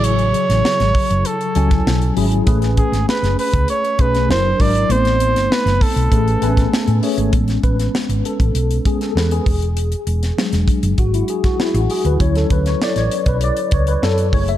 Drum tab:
HH |xxxx-xoxxxxx-xox|xxxx-xoxxxxx--ox|xxxx-xoxxxxx-xox|xxxx-xxxxxxx-xox|
SD |---ooo-----oo---|-o-ooo-----oo---|-o-ooo-----oo---|-o-oo------oo---|
BD |------o----o----|o-o----o--o---o-|------o-o--o----|o-o----o--o---o-|

HH |xxxx-xxxxxxx-xox|xxxx-xxxxxxx-xox|
SD |---ooo-----oo---|-o-ooo------o---|
BD |------o-o--o----|o-o----o--o---o-|